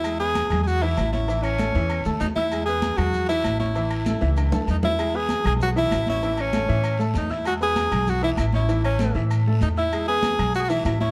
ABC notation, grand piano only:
X:1
M:4/4
L:1/8
Q:1/4=194
K:E
V:1 name="Grand piano"
[G,Gg] [B,Bb]2 [G,Gg]2 [E,Ee]2 [Ccc'] | [E,Ee]2 [A,Aa] [E,Ee]2 [A,Aa]2 [Eee'] | [G,Gg] [B,Bb]2 [G,Gg]2 [E,Ee]2 [Ccc'] | [E,Ee]2 [A,Aa] [E,Ee]2 [A,Aa]2 [Eee'] |
[G,Gg] [B,Bb]2 [G,Gg]2 [E,Ee]2 [Ccc'] | [E,Ee]2 [A,Aa] [E,Ee]2 [A,Aa]2 [Eee'] | [G,Gg] [B,Bb]2 [G,Gg]2 [E,Ee]2 [Ccc'] | [E,Ee]2 [A,Aa] [E,Ee]2 [A,Aa]2 [Eee'] |
[G,Gg] [B,Bb]2 [G,Gg]2 [E,Ee]2 [Ccc'] |]